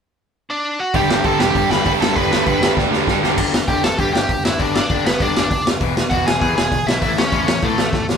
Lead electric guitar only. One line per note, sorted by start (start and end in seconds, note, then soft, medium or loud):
0.50 0.78 D4 medium
0.50 0.81 D5 medium
0.79 0.94 F#4 medium
0.79 0.95 F#5 medium
0.95 1.23 G4 medium
0.95 1.26 G5 medium
1.25 1.39 A4 medium
1.25 1.41 A5 medium
1.40 1.68 G4 medium
1.40 1.72 G5 medium
1.71 1.85 B4 medium
1.71 1.85 B5 medium
1.87 1.92 B4 medium
1.87 1.91 B5 medium
2.01 2.16 A4 medium
2.01 2.16 A5 medium
2.16 2.73 B4 medium
2.16 2.77 B5 loud
3.68 3.83 G4 medium
3.68 3.84 G5 loud
3.84 3.98 A4 medium
3.84 3.99 A5 medium
3.99 4.13 G4 medium
3.99 4.12 G5 loud
4.13 4.42 G4 medium
4.13 4.45 G5 medium
4.45 4.59 E4 medium
4.45 4.60 E5 medium
4.61 4.74 D4 medium
4.61 4.74 D5 medium
4.75 5.03 D4 medium
4.75 5.06 D5 medium
5.06 5.20 B3 medium
5.06 5.22 B4 medium
5.21 5.63 D4 medium
5.21 5.66 D5 medium
6.10 6.25 F#4 medium
6.10 6.26 F#5 loud
6.27 6.40 G#4 medium
6.27 6.40 G#5 medium
6.41 6.56 G#4 medium
6.41 6.55 G#5 loud
6.56 6.85 G#4 medium
6.56 6.88 G#5 medium
6.87 7.01 E4 medium
6.87 7.01 E5 medium
7.02 7.16 E4 medium
7.02 7.18 E5 medium
7.18 7.46 C#4 medium
7.18 7.47 C#5 medium
7.48 7.62 C#4 medium
7.48 7.64 C#5 medium
7.64 8.06 A3 medium
7.64 8.06 A4 medium